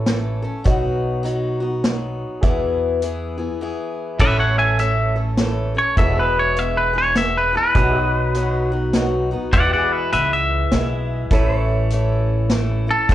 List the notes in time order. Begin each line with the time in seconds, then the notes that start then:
Already playing: A1 E4 A4 C#5
0.06 E3 A3 C#4 A4, snare, closed hi-hat
0.42 A3 C#4 A4
0.64 B1 B2 F#3 B3 D#4 F#4 B4 D#5, kick, closed hi-hat
1.23 F#3 B3 D#4 F#4, closed hi-hat
1.60 B3 D#4 F#4
1.84 F#3 B3 D#4 F#4, snare, closed hi-hat
2.41 E2 B2 E3 B3 E4 G#4 B4 E5, kick, closed hi-hat
3.02 E3 B3 E4 G#4, closed hi-hat
3.38 E3 B3 E4 G#4
3.61 E3 B3 E4 G#4
4.18 A1 A2 E3 A3 C#4 E4 A4 B4 C#5 E5, kick, crash
4.22 C#5 E5
4.39 C#5 F#5
4.58 E5 G#5
4.79 E3 A3 C#4 A4 E5, closed hi-hat
5.16 A3 C#4 A4
5.37 E3 A3 C#4 E4 A4 C#5, snare, closed hi-hat
5.75 A3 C#4 A4 C#5
5.96 E1 E2 B2 E3 G#3 E4 G#4 A4 B4 E5, kick, closed hi-hat
6.00 B3 G#4 C#5 E5
6.19 G#4 B4
6.25 B4
6.39 C#5
6.56 E3 G#3 B3 G#4 E5, closed hi-hat
6.77 B4
6.93 E3 G#3 B3 G#4
6.98 C#5
7.15 E3 G#3 B3 G#4 E5, snare, closed hi-hat
7.38 B4
7.53 E3 G#3 B3 G#4
7.57 B4
7.75 B1 B2 F#3 B3 D#4 F#4 G#4 B4 E5, kick, closed hi-hat
7.97 F#4 D#5
8.35 F#3 B3 D#4 F#4, closed hi-hat
8.72 B3 D#4 F#4
8.93 F#3 B3 D#4 F#4 B4, snare, closed hi-hat
9.31 B3 D#4 F#4
9.52 E2 B2 E3 G#3 B3 E4 F#4 G#4 B4 D5 E5 F#5, kick, closed hi-hat
9.73 D5 F#5
9.79 G#4
9.92 B4 E5
10.12 C#2 E3 G#3 B3 E4 B4 E5, closed hi-hat
10.33 E5
10.72 B1 E3 G#3 B3 E4, snare, closed hi-hat
11.31 A1 A2 E3 A3 C#4 E4 A4 B4 C#5 E5, kick, closed hi-hat
11.58 C#5
11.90 E3 A3 C#4 E4, closed hi-hat
12.50 E3 A3 C#4 E4, snare, closed hi-hat
12.87 A3 C#4 E4 A4
13.09 E1 E2 B2 E3 G#3 B3 E4 G#4 A4 B4, kick, closed hi-hat